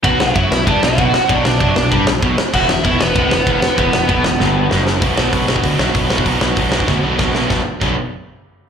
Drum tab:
CC |----------------|----------------|x---------------|----------------|
RD |x---x---x---x---|x---x---x---x---|----x---x---x---|x---x-----------|
HH |----------------|----------------|----------------|----------------|
SD |--o---o---o---o-|--o---o---o---o-|--o---o---o---o-|--o---o-o---o-o-|
BD |o---o---o---o---|o---o---o---o---|o---o---o---o---|o---o-----------|

CC |----------------|----------------|----x-----------|
RD |----------------|----------------|----------------|
HH |o---o---o---o---|o---o-----------|----------------|
SD |--o---o---o---o-|--o---o-o---o-o-|o---------------|
BD |o---o--oo---o--o|o---o--oo---o---|o---o-----------|